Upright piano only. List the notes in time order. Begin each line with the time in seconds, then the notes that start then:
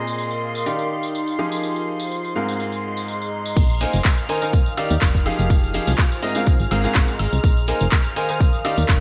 Already playing: A#2 C4 G#4 A#4 D#5
0.66 D#3 D#4 G4 D5 F5
1.39 F3 D#4 G4 G#4 F5
2.36 G#2 C4 G#4 A#4 F5
3.81 A#3 D#4 A#4 C5 G#5
4.29 D#3 D#4 A#4 C5 G#5
4.42 D#3 D#4 A#4 C5 G#5
4.77 D#3 D#4 G4 D5 F5
5.26 F3 D#4 G4 G#4 F5
5.74 F3 D#4 G4 G#4 F5
6.23 G#2 C4 G#4 A#4 D#5
6.36 G#2 C4 G#4 A#4 F5
6.71 G#2 C4 G#4 A#4 F5
6.84 G#2 C4 G#4 A#4 F5
6.95 G#2 C4
7.68 A#3 D#4 A#4 C5 G#5
8.16 D#3 D#4 A#4 C5 G#5
8.29 D#3 D#4 A#4 C5 G#5
8.65 D#3 D#4 G4 D5 F5